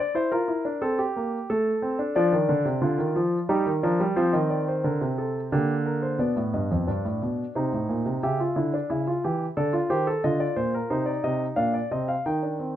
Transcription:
grand piano
0.00 D5
0.15 E4 C5
0.32 F4 A#4
0.48 E4
0.65 D4
0.82 C4 A4
0.99 G4
1.16 A#3
1.50 A3 A4
1.82 C4
1.99 D4
2.16 F3 D4 D5
2.32 D#3
2.49 D3
2.65 C3
2.82 D3 F4
2.98 D#3
3.16 F3
3.49 G3 D#4 G4
3.66 D#3
3.83 F3 D4 A#4
4.00 G3
4.16 F3 C4 C5
4.33 D#3 D#5
4.50 D5
4.68 C5
4.84 D3 A#4
5.01 C3
5.18 A4
5.52 D3 A#3 G4
5.86 A#4
6.02 C5
6.19 B2 B3 D5
6.36 A2
6.54 G2 D#5
6.71 F2
6.87 G2 D4 D5
7.05 A2
7.22 B2
7.55 C3 D#4 C5
7.73 A2
7.89 A#2
8.06 C3
8.23 C#3 G4 E5
8.40 F4
8.56 D3 E4
8.74 D4
8.90 C#3 E4
9.07 F4
9.24 E3 G4
9.57 D3 A4 D5
9.73 F4
9.90 D#3 G4 C5
10.07 A4
10.24 D3 F4 D#5
10.40 D5
10.56 A#2 C5
10.74 A#4
10.90 C3 D#4 C5
11.06 D5
11.24 C3 D#5
11.56 A#2 D4 F5
11.74 D5
11.91 C3 C4 D#5
12.08 F5
12.26 D#3 D#4 G5
12.43 D4
12.60 C4

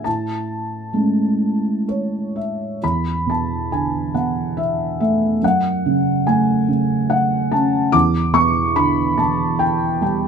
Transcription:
felt piano
0.04 A2 A5
0.93 G#3 A3 C#4
1.88 C#5
2.36 E5
2.83 E2 B5
3.26 B2 A5
3.71 D3 G#5
4.14 B2 F#5
4.57 E5
5.00 A3 E5
5.42 F#2 F#5
5.86 C#3
6.27 A3 G#5
6.68 C#3
7.10 F#5
7.52 C#4 A5
7.92 E2 D6
8.33 B2 C#6
8.76 D3 B5
9.17 B2 A5
9.59 G5
10.01 G3 G5

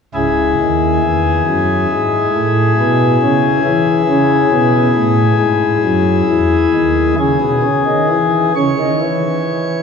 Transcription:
pipe organ
0.14 C#1 C#2 E4 G#4
0.60 D#2
1.03 E2
1.47 F#2
1.91 G#2
2.35 A2
2.79 B2
3.22 C#3
3.65 E3
4.09 C#3
4.51 B2
4.95 A2
5.39 G#2
5.83 F#2
6.29 E2
6.74 D#2
7.19 C#3 G#4
7.41 B2
7.63 C#3
7.86 D#3
8.09 E3
8.56 C#3 C#5
8.79 D#3
9.01 E3

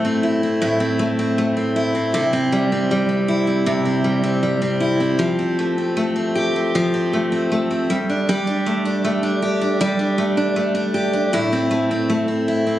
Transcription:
steel-string acoustic guitar
Already playing: A2 A3 E4
0.05 C4
0.23 E4
0.43 C4
0.62 A2 E4
0.80 C4
0.99 A3
1.19 C4
1.38 A3
1.57 C4
1.76 E4
1.95 C4
2.14 C3 E4
2.33 C4
2.52 G3
2.72 C4
2.91 G3
3.09 C4
3.28 E4
3.47 C4
3.66 C3 E4
3.85 C4
4.04 G3
4.24 C4
4.43 G3
4.62 C4
4.80 E4
5.00 C4
5.19 F3 G4
5.39 C4
5.59 A3
5.78 C4
5.97 A3
6.16 C4
6.35 G4
6.56 C4
6.75 F3 G4
6.94 C4
7.13 A3
7.32 C4
7.52 A3
7.71 C4
7.90 G3
8.10 D4
8.29 G3 G4
8.47 D4
8.66 A3
8.85 D4
9.05 A3
9.23 D4
9.42 G4
9.61 D4
9.81 G3 G4
9.99 D4
10.18 A3
10.37 D4
10.56 A3
10.75 D4
10.94 G4
11.13 D4
11.33 A2 E4
11.53 C4
11.71 A3
11.91 C4
12.10 A3
12.28 C4
12.48 E4
12.67 C4

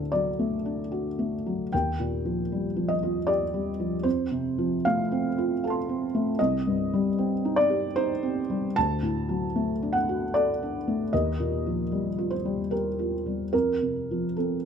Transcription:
felt piano
Already playing: D2 A2 D3 A4
0.12 F#3 D5
0.39 A3
0.65 D4
0.92 F#4
1.19 A3
1.46 F#3
1.73 D#2 G5
2.00 A#2
2.25 F3
2.52 G3
2.76 F3
2.88 D#5
3.03 F4
3.27 G4 D5
3.54 G3
3.80 F3
4.03 F2 C5
4.31 C3
4.58 F3
4.85 A3 F5
5.12 C4
5.38 F4
5.64 A4 F5 A5
5.70 C6
5.89 C4
6.15 A3
6.39 C2 D#5
6.67 G2
6.93 G3
7.18 C4
7.45 D#4
7.56 D5
7.70 G4
7.96 D#4 C5
8.23 C4
8.50 G3
8.76 D2 A5
9.03 A2
9.29 F#3
9.56 A3
9.82 D4
9.93 F#5
10.09 F#4
10.34 A4 D5
10.63 D4
10.88 A3
11.13 D#2 D#5
11.40 A#2
11.66 F3
11.92 G3
12.18 F4
12.30 C5
12.45 G3
12.71 G4 A#4
12.99 F4
13.26 G3
13.53 F2 A#4
13.82 C3
14.11 F3
14.37 C4 A4

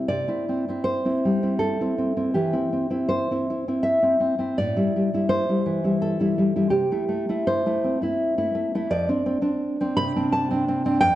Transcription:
nylon-string guitar
0.08 C3 D5
0.28 C4 E4
0.49 C4
0.69 C4 E4
0.84 C5
1.05 C4 E4
1.25 G3
1.43 C4 E4
1.59 A4
1.81 C4 E4
1.98 C4
2.17 C4 E4
2.34 E3 G4
2.53 C4 E4
2.73 C4
2.90 C4 E4
3.09 C5
3.31 C4 E4
3.50 E4
3.68 C4 E4
3.83 E5
4.02 C4 E4
4.20 C4
4.39 C4 E4
4.58 A2 D5
4.76 G3 E4
4.96 G3
5.14 G3 E4
5.29 C5
5.49 G3 E4
5.66 E3
5.84 G3 E4
6.02 A4
6.20 G3 E4
6.38 G3
6.56 G3 E4
6.70 C3 G4
6.91 A3 E4
7.09 A3
7.29 A3 E4
7.47 C5
7.66 A3 E4
7.84 C4
8.02 A3 E4
8.38 A3 E4
8.55 A3
8.75 A3 E4
8.90 F2 D5
9.09 C4 D4
9.26 C4
9.42 C4 D4
9.81 C4 D4
9.97 C3 B5
10.16 C4 D4
10.32 A5
10.51 C4 D4
10.68 C4
10.86 C4 D4
11.01 F2 G5

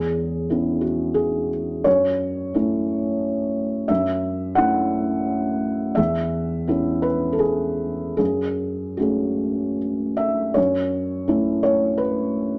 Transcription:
felt piano
Already playing: E2 G#4
0.50 B3 C#4 E4
0.81 F#4
1.14 G#4
1.84 F#2 C#5
2.54 A3 C#4 E4
3.88 F#2 E5
4.55 A3 C#4 E4 F#5
5.95 E2 E5
6.67 B3 C#4 E4
7.02 B4
7.33 A4
7.39 G#4
8.17 F#2 G#4
8.97 A3 C#4 F#4 G#4
10.17 E5
10.54 F#2 C#5
11.28 A3 C#4 E4
11.63 C#5
11.98 B4

